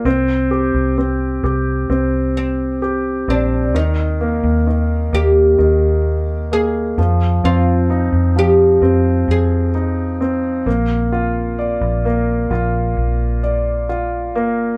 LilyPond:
<<
  \new Staff \with { instrumentName = "Oud" } { \time 4/4 \key ees \major \tempo 4 = 65 r2 r8 c'4 d'8 | ees'4. g'4. aes'4 | f'4 g'4 aes'4. r8 | r1 | }
  \new Staff \with { instrumentName = "Grand piano" } { \time 4/4 \key ees \major c'8 g'8 c'8 g'8 c'4 g'8 c'8 | ees8 bes8 ees8 bes8 ees4 bes8 f8 | c'8 ees'8 f8 c'4 ees'8 c'8 bes8 | f'8 d''8 bes8 f'4 d''8 f'8 bes8 | }
  \new Staff \with { instrumentName = "Fingered electric bass" } { \clef bass \time 4/4 \key ees \major c,8. c,8. c,8 c,4. bes,,8 | ees,8. ees,8. ees,8 ees,4. f,8 | f,8. f,8. f,8 f,4. bes,,8~ | bes,,8. bes,,8. bes,,8 bes,,4. g,,8 | }
>>